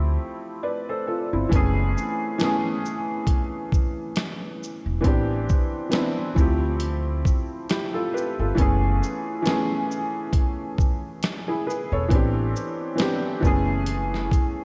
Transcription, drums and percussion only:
1.52 kick loud
1.52 closed hi-hat medium
1.98 shaker soft
2.40 snare loud
2.40 closed hi-hat medium
2.86 shaker soft
3.27 kick medium
3.27 closed hi-hat medium
3.72 kick medium
3.72 shaker soft
4.16 snare loud
4.16 closed hi-hat medium
4.64 shaker soft
5.04 kick loud
5.04 closed hi-hat medium
5.50 kick medium
5.50 shaker soft
5.92 snare loud
5.92 closed hi-hat medium
6.36 kick medium
6.36 shaker soft
6.80 closed hi-hat medium
7.25 kick medium
7.25 shaker soft
7.69 snare loud
7.69 closed hi-hat medium
8.17 shaker soft
8.57 kick medium
8.57 closed hi-hat medium
9.03 shaker soft
9.46 snare loud
9.46 closed hi-hat medium
9.91 shaker soft
10.33 kick medium
10.33 closed hi-hat medium
10.78 kick medium
10.78 shaker soft
11.23 snare loud
11.23 closed hi-hat medium
11.70 shaker soft
12.10 kick loud
12.10 closed hi-hat medium
12.56 shaker soft
12.98 snare loud
12.98 closed hi-hat medium
13.43 kick medium
13.43 shaker soft
13.86 closed hi-hat medium
14.14 snare soft
14.31 kick medium
14.31 closed hi-hat soft
14.31 shaker soft

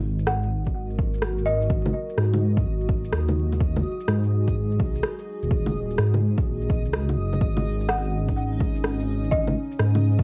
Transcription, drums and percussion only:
0.19 shaker medium
0.27 cross-stick loud
0.43 shaker soft
0.66 kick medium
0.66 shaker medium
0.90 shaker soft
0.99 kick medium
1.14 shaker medium
1.22 cross-stick loud
1.38 shaker soft
1.62 shaker medium
1.70 kick loud
1.86 low bongo medium
1.86 shaker soft
2.09 shaker medium
2.18 cross-stick loud
2.34 low bongo medium
2.34 shaker soft
2.57 kick loud
2.57 shaker medium
2.81 shaker soft
2.89 kick loud
3.04 shaker medium
3.13 cross-stick loud
3.29 low bongo medium
3.29 shaker soft
3.52 low bongo soft
3.52 shaker medium
3.60 kick loud
3.76 low bongo medium
3.76 shaker soft
4.00 shaker medium
4.08 cross-stick loud
4.24 shaker soft
4.48 kick medium
4.48 shaker medium
4.71 shaker soft
4.80 kick loud
4.95 shaker medium
5.03 cross-stick loud
5.19 shaker soft
5.43 shaker medium
5.51 kick loud
5.66 low bongo medium
5.66 shaker soft
5.90 shaker medium
5.98 cross-stick loud
6.14 low bongo medium
6.14 shaker soft
6.38 kick loud
6.38 shaker medium
6.62 shaker soft
6.70 kick loud
6.85 shaker medium
6.94 cross-stick loud
7.09 low bongo soft
7.09 shaker soft
7.33 low bongo soft
7.33 shaker medium
7.41 kick loud
7.57 low bongo medium
7.57 shaker soft
7.81 shaker soft
7.89 cross-stick loud
8.05 shaker soft
8.28 kick medium
8.28 shaker soft
8.52 shaker soft
8.60 kick loud
8.76 shaker soft
8.84 cross-stick loud
9.00 shaker soft
9.24 shaker medium
9.32 kick loud
9.47 low bongo medium
9.47 shaker soft
9.71 shaker soft
9.79 cross-stick loud
9.95 low bongo medium
9.95 shaker soft
10.19 kick loud
10.19 shaker soft

